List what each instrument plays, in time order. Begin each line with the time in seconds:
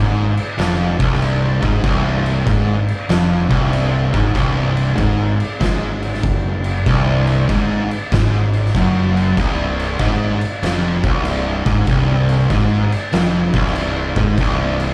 Already playing: fingered electric bass G#1, distorted electric guitar G#2
0.37 crash
0.58 fingered electric bass F1, distorted electric guitar F2, snare, crash
0.99 fingered electric bass C1, distorted electric guitar C2, kick, crash
1.13 snare
1.22 crash
1.62 fingered electric bass G#1, distorted electric guitar G#2, kick, crash
1.84 fingered electric bass C1, distorted electric guitar C2, kick, crash
2.26 crash
2.46 fingered electric bass G#1, distorted electric guitar G#2, kick, crash
2.88 crash
3.09 fingered electric bass F1, distorted electric guitar F2, snare, crash
3.50 fingered electric bass C1, distorted electric guitar C2, kick, crash
3.73 crash
4.14 fingered electric bass G#1, distorted electric guitar G#2, kick, crash
4.33 fingered electric bass C1, distorted electric guitar C2, kick, crash
4.77 crash
4.96 fingered electric bass G#1, distorted electric guitar G#2, kick, crash
5.40 crash
5.60 fingered electric bass G#1, distorted electric guitar G#2, kick, snare, crash
6.02 crash
6.14 snare
6.23 fingered electric bass F#1, distorted electric guitar F#2, kick, crash
6.64 crash
6.86 fingered electric bass C1, distorted electric guitar C2, kick, crash
7.27 crash
7.49 fingered electric bass G#1, distorted electric guitar G#2, kick, crash
7.91 crash
8.12 fingered electric bass G#1, distorted electric guitar G#2, kick, snare, crash
8.54 crash
8.66 snare
8.74 fingered electric bass F#1, distorted electric guitar F#2, kick, crash
9.17 crash
9.37 fingered electric bass C1, distorted electric guitar C2, kick, crash
9.79 crash
9.99 fingered electric bass G#1, distorted electric guitar G#2, kick, crash
10.41 crash
10.62 fingered electric bass F1, distorted electric guitar F2, snare, crash
11.03 fingered electric bass C1, distorted electric guitar C2, kick, crash
11.25 crash
11.66 fingered electric bass G#1, distorted electric guitar G#2, kick, crash
11.87 fingered electric bass C1, distorted electric guitar C2, kick, crash
12.29 crash
12.50 fingered electric bass G#1, distorted electric guitar G#2, kick, crash
12.92 crash
13.13 fingered electric bass F1, distorted electric guitar F2, snare, crash
13.54 fingered electric bass C1, distorted electric guitar C2, kick, crash
13.67 snare
13.75 crash
14.16 fingered electric bass G#1, distorted electric guitar G#2, kick, crash
14.38 fingered electric bass C1, distorted electric guitar C2, kick, crash
14.80 crash